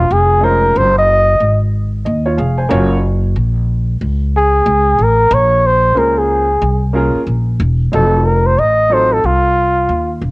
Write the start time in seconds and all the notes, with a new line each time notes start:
Already playing: F4
0.10 F1 G#4
0.41 G#3 C#4 D#4 F4 A#4 C5
0.76 F#1 C5
0.99 D#5
1.40 G#1
2.05 D#2 D#5
2.26 F4 C#5
2.38 F1 G#4 F5
2.58 C5 G#5
2.69 F#1 A#3 C#4 F4 F#4 C#5
3.36 A#1
4.01 C#2
4.37 G#4
4.66 C#2
4.99 A1
5.03 A#4
5.31 A#1 C#5
5.66 C5
5.95 C#2 A#3 C#4 F4 G#4 A#4 C5
6.19 G#4
6.62 C2
6.93 A#3 C#4 F4 G#4 A#4
7.15 muted upright bass stroke
7.27 A#1
7.60 E1
7.92 F1 F#3 C4 D#4 F4 A4
8.26 A#4
8.46 C5
8.58 A1 D#5
8.89 F#3 C4 D#4 F4 A4 C5
9.13 A4
9.24 C2 F4
9.89 D#2
10.22 E1